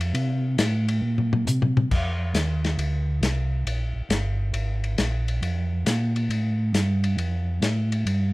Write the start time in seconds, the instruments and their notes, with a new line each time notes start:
Already playing: tonewheel organ F2
0.01 ride
0.14 tonewheel organ C3, ride
0.58 tonewheel organ A2, snare, hi-hat pedal, ride
0.88 ride
1.02 tonewheel organ A#2
1.18 mid tom
1.33 mid tom
1.47 tonewheel organ C3, hi-hat pedal, mid tom
1.62 mid tom
1.77 mid tom
1.91 tonewheel organ F2, kick, crash
2.34 tonewheel organ D#2, snare, hi-hat pedal, ride
2.64 snare, ride
2.78 tonewheel organ D2, ride
3.21 tonewheel organ C2, snare, hi-hat pedal, ride
3.65 tonewheel organ A#1, ride
3.95 tonewheel organ A#1
4.09 tonewheel organ G1, snare, hi-hat pedal, ride
4.53 tonewheel organ G#1, ride
4.84 ride
4.98 tonewheel organ A#1, snare, hi-hat pedal, ride
5.28 ride
5.42 tonewheel organ F2, ride
5.86 tonewheel organ A#2, snare, hi-hat pedal, ride
6.16 ride
6.29 tonewheel organ A2, ride
6.73 tonewheel organ G2, snare, hi-hat pedal, ride
7.04 ride
7.17 tonewheel organ F2, ride
7.62 tonewheel organ A2, snare, hi-hat pedal, ride
7.92 ride
8.05 tonewheel organ G2, ride